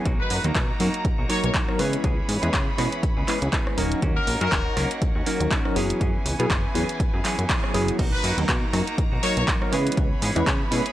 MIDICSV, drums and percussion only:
0, 0, Header, 1, 2, 480
1, 0, Start_track
1, 0, Tempo, 495868
1, 55, Time_signature, 4, 2, 24, 8
1, 10572, End_track
2, 0, Start_track
2, 0, Title_t, "Drums"
2, 53, Note_on_c, 9, 42, 60
2, 54, Note_on_c, 9, 36, 111
2, 150, Note_off_c, 9, 42, 0
2, 151, Note_off_c, 9, 36, 0
2, 293, Note_on_c, 9, 46, 105
2, 390, Note_off_c, 9, 46, 0
2, 429, Note_on_c, 9, 42, 52
2, 526, Note_off_c, 9, 42, 0
2, 534, Note_on_c, 9, 42, 61
2, 535, Note_on_c, 9, 36, 108
2, 537, Note_on_c, 9, 39, 114
2, 631, Note_off_c, 9, 36, 0
2, 631, Note_off_c, 9, 42, 0
2, 634, Note_off_c, 9, 39, 0
2, 774, Note_on_c, 9, 46, 89
2, 871, Note_off_c, 9, 46, 0
2, 911, Note_on_c, 9, 42, 51
2, 1008, Note_off_c, 9, 42, 0
2, 1014, Note_on_c, 9, 36, 121
2, 1014, Note_on_c, 9, 42, 65
2, 1111, Note_off_c, 9, 36, 0
2, 1111, Note_off_c, 9, 42, 0
2, 1255, Note_on_c, 9, 46, 107
2, 1351, Note_off_c, 9, 46, 0
2, 1390, Note_on_c, 9, 42, 53
2, 1487, Note_off_c, 9, 42, 0
2, 1494, Note_on_c, 9, 36, 106
2, 1494, Note_on_c, 9, 42, 61
2, 1497, Note_on_c, 9, 39, 112
2, 1591, Note_off_c, 9, 36, 0
2, 1591, Note_off_c, 9, 42, 0
2, 1594, Note_off_c, 9, 39, 0
2, 1631, Note_on_c, 9, 37, 60
2, 1728, Note_off_c, 9, 37, 0
2, 1734, Note_on_c, 9, 46, 91
2, 1831, Note_off_c, 9, 46, 0
2, 1870, Note_on_c, 9, 42, 57
2, 1967, Note_off_c, 9, 42, 0
2, 1974, Note_on_c, 9, 42, 64
2, 1975, Note_on_c, 9, 36, 107
2, 2071, Note_off_c, 9, 42, 0
2, 2072, Note_off_c, 9, 36, 0
2, 2214, Note_on_c, 9, 46, 101
2, 2311, Note_off_c, 9, 46, 0
2, 2350, Note_on_c, 9, 42, 52
2, 2447, Note_off_c, 9, 42, 0
2, 2455, Note_on_c, 9, 36, 106
2, 2455, Note_on_c, 9, 42, 65
2, 2458, Note_on_c, 9, 39, 115
2, 2552, Note_off_c, 9, 36, 0
2, 2552, Note_off_c, 9, 42, 0
2, 2554, Note_off_c, 9, 39, 0
2, 2695, Note_on_c, 9, 37, 65
2, 2695, Note_on_c, 9, 46, 85
2, 2792, Note_off_c, 9, 37, 0
2, 2792, Note_off_c, 9, 46, 0
2, 2831, Note_on_c, 9, 42, 49
2, 2928, Note_off_c, 9, 42, 0
2, 2935, Note_on_c, 9, 36, 116
2, 2936, Note_on_c, 9, 42, 64
2, 3032, Note_off_c, 9, 36, 0
2, 3032, Note_off_c, 9, 42, 0
2, 3175, Note_on_c, 9, 46, 102
2, 3178, Note_on_c, 9, 39, 60
2, 3272, Note_off_c, 9, 46, 0
2, 3275, Note_off_c, 9, 39, 0
2, 3311, Note_on_c, 9, 42, 53
2, 3407, Note_off_c, 9, 42, 0
2, 3415, Note_on_c, 9, 36, 100
2, 3415, Note_on_c, 9, 42, 64
2, 3418, Note_on_c, 9, 39, 111
2, 3512, Note_off_c, 9, 36, 0
2, 3512, Note_off_c, 9, 42, 0
2, 3514, Note_off_c, 9, 39, 0
2, 3552, Note_on_c, 9, 37, 64
2, 3648, Note_off_c, 9, 37, 0
2, 3656, Note_on_c, 9, 46, 91
2, 3753, Note_off_c, 9, 46, 0
2, 3791, Note_on_c, 9, 42, 59
2, 3888, Note_off_c, 9, 42, 0
2, 3895, Note_on_c, 9, 36, 110
2, 3895, Note_on_c, 9, 42, 64
2, 3992, Note_off_c, 9, 36, 0
2, 3992, Note_off_c, 9, 42, 0
2, 4136, Note_on_c, 9, 46, 101
2, 4232, Note_off_c, 9, 46, 0
2, 4271, Note_on_c, 9, 42, 56
2, 4368, Note_off_c, 9, 42, 0
2, 4374, Note_on_c, 9, 42, 69
2, 4376, Note_on_c, 9, 36, 98
2, 4377, Note_on_c, 9, 39, 116
2, 4471, Note_off_c, 9, 42, 0
2, 4472, Note_off_c, 9, 36, 0
2, 4474, Note_off_c, 9, 39, 0
2, 4615, Note_on_c, 9, 37, 67
2, 4615, Note_on_c, 9, 46, 88
2, 4712, Note_off_c, 9, 37, 0
2, 4712, Note_off_c, 9, 46, 0
2, 4752, Note_on_c, 9, 42, 57
2, 4849, Note_off_c, 9, 42, 0
2, 4856, Note_on_c, 9, 36, 114
2, 4856, Note_on_c, 9, 42, 71
2, 4953, Note_off_c, 9, 36, 0
2, 4953, Note_off_c, 9, 42, 0
2, 5096, Note_on_c, 9, 46, 104
2, 5193, Note_off_c, 9, 46, 0
2, 5232, Note_on_c, 9, 42, 57
2, 5329, Note_off_c, 9, 42, 0
2, 5336, Note_on_c, 9, 36, 97
2, 5336, Note_on_c, 9, 42, 66
2, 5339, Note_on_c, 9, 39, 112
2, 5433, Note_off_c, 9, 36, 0
2, 5433, Note_off_c, 9, 42, 0
2, 5435, Note_off_c, 9, 39, 0
2, 5472, Note_on_c, 9, 37, 61
2, 5569, Note_off_c, 9, 37, 0
2, 5577, Note_on_c, 9, 46, 83
2, 5674, Note_off_c, 9, 46, 0
2, 5712, Note_on_c, 9, 42, 66
2, 5809, Note_off_c, 9, 42, 0
2, 5816, Note_on_c, 9, 36, 113
2, 5817, Note_on_c, 9, 42, 68
2, 5913, Note_off_c, 9, 36, 0
2, 5914, Note_off_c, 9, 42, 0
2, 6057, Note_on_c, 9, 46, 106
2, 6154, Note_off_c, 9, 46, 0
2, 6193, Note_on_c, 9, 42, 57
2, 6290, Note_off_c, 9, 42, 0
2, 6296, Note_on_c, 9, 36, 104
2, 6296, Note_on_c, 9, 42, 71
2, 6299, Note_on_c, 9, 39, 116
2, 6392, Note_off_c, 9, 36, 0
2, 6393, Note_off_c, 9, 42, 0
2, 6396, Note_off_c, 9, 39, 0
2, 6537, Note_on_c, 9, 46, 88
2, 6633, Note_off_c, 9, 46, 0
2, 6672, Note_on_c, 9, 42, 55
2, 6769, Note_off_c, 9, 42, 0
2, 6775, Note_on_c, 9, 36, 117
2, 6776, Note_on_c, 9, 42, 68
2, 6872, Note_off_c, 9, 36, 0
2, 6873, Note_off_c, 9, 42, 0
2, 7015, Note_on_c, 9, 46, 104
2, 7018, Note_on_c, 9, 39, 64
2, 7112, Note_off_c, 9, 46, 0
2, 7115, Note_off_c, 9, 39, 0
2, 7151, Note_on_c, 9, 42, 56
2, 7248, Note_off_c, 9, 42, 0
2, 7255, Note_on_c, 9, 36, 100
2, 7256, Note_on_c, 9, 42, 67
2, 7258, Note_on_c, 9, 39, 119
2, 7352, Note_off_c, 9, 36, 0
2, 7352, Note_off_c, 9, 42, 0
2, 7355, Note_off_c, 9, 39, 0
2, 7393, Note_on_c, 9, 37, 62
2, 7489, Note_off_c, 9, 37, 0
2, 7496, Note_on_c, 9, 46, 88
2, 7593, Note_off_c, 9, 46, 0
2, 7632, Note_on_c, 9, 42, 65
2, 7728, Note_off_c, 9, 42, 0
2, 7735, Note_on_c, 9, 36, 120
2, 7736, Note_on_c, 9, 42, 66
2, 7736, Note_on_c, 9, 49, 102
2, 7831, Note_off_c, 9, 36, 0
2, 7833, Note_off_c, 9, 42, 0
2, 7833, Note_off_c, 9, 49, 0
2, 7975, Note_on_c, 9, 46, 109
2, 8072, Note_off_c, 9, 46, 0
2, 8111, Note_on_c, 9, 42, 57
2, 8208, Note_off_c, 9, 42, 0
2, 8214, Note_on_c, 9, 36, 112
2, 8215, Note_on_c, 9, 42, 70
2, 8218, Note_on_c, 9, 39, 127
2, 8311, Note_off_c, 9, 36, 0
2, 8312, Note_off_c, 9, 42, 0
2, 8315, Note_off_c, 9, 39, 0
2, 8455, Note_on_c, 9, 37, 61
2, 8455, Note_on_c, 9, 46, 91
2, 8551, Note_off_c, 9, 37, 0
2, 8551, Note_off_c, 9, 46, 0
2, 8591, Note_on_c, 9, 42, 54
2, 8688, Note_off_c, 9, 42, 0
2, 8694, Note_on_c, 9, 36, 125
2, 8695, Note_on_c, 9, 42, 70
2, 8791, Note_off_c, 9, 36, 0
2, 8792, Note_off_c, 9, 42, 0
2, 8934, Note_on_c, 9, 46, 107
2, 9031, Note_off_c, 9, 46, 0
2, 9070, Note_on_c, 9, 42, 59
2, 9167, Note_off_c, 9, 42, 0
2, 9174, Note_on_c, 9, 36, 107
2, 9175, Note_on_c, 9, 42, 69
2, 9177, Note_on_c, 9, 39, 122
2, 9271, Note_off_c, 9, 36, 0
2, 9271, Note_off_c, 9, 42, 0
2, 9274, Note_off_c, 9, 39, 0
2, 9310, Note_on_c, 9, 37, 60
2, 9407, Note_off_c, 9, 37, 0
2, 9415, Note_on_c, 9, 46, 97
2, 9511, Note_off_c, 9, 46, 0
2, 9550, Note_on_c, 9, 42, 50
2, 9602, Note_off_c, 9, 42, 0
2, 9602, Note_on_c, 9, 42, 69
2, 9654, Note_on_c, 9, 36, 123
2, 9655, Note_off_c, 9, 42, 0
2, 9655, Note_on_c, 9, 42, 63
2, 9751, Note_off_c, 9, 36, 0
2, 9751, Note_off_c, 9, 42, 0
2, 9894, Note_on_c, 9, 46, 115
2, 9991, Note_off_c, 9, 46, 0
2, 10030, Note_on_c, 9, 42, 55
2, 10127, Note_off_c, 9, 42, 0
2, 10134, Note_on_c, 9, 36, 108
2, 10135, Note_on_c, 9, 42, 69
2, 10138, Note_on_c, 9, 39, 121
2, 10231, Note_off_c, 9, 36, 0
2, 10232, Note_off_c, 9, 42, 0
2, 10235, Note_off_c, 9, 39, 0
2, 10375, Note_on_c, 9, 46, 93
2, 10471, Note_off_c, 9, 46, 0
2, 10510, Note_on_c, 9, 42, 55
2, 10572, Note_off_c, 9, 42, 0
2, 10572, End_track
0, 0, End_of_file